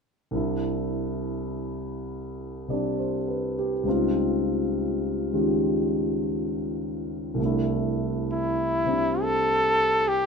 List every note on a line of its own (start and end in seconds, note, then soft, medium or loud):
0.31 3.85 C2 soft
0.31 2.67 C3 soft
0.31 2.70 D4 soft
0.36 3.87 E4 soft
2.68 3.85 C3 soft
2.68 3.84 G3 soft
2.68 3.86 C4 soft
2.68 3.87 D4 soft
2.68 3.15 D5 soft
2.99 3.53 C5 soft
3.28 3.73 B4 soft
3.59 4.03 G4 soft
3.83 7.37 C#2 soft
3.83 7.38 C#3 soft
3.83 7.39 G3 soft
3.87 7.39 C4 soft
3.87 7.40 D#4 soft
3.87 5.33 F4 soft
5.33 7.39 D#3 soft
5.33 7.39 G#3 soft
5.33 7.40 C#4 soft
5.33 7.40 F4 soft
5.33 7.41 G4 soft
7.34 10.26 C2 soft
7.34 8.84 C3 soft
7.40 10.26 A3 soft
7.40 8.87 D4 soft
7.45 10.26 E4 soft
8.32 9.24 E4 medium
8.85 10.26 C3 soft
8.85 10.26 G3 soft
8.85 10.26 C4 soft
8.85 10.26 D4 soft
9.22 10.10 A4 medium
10.08 10.26 G4 medium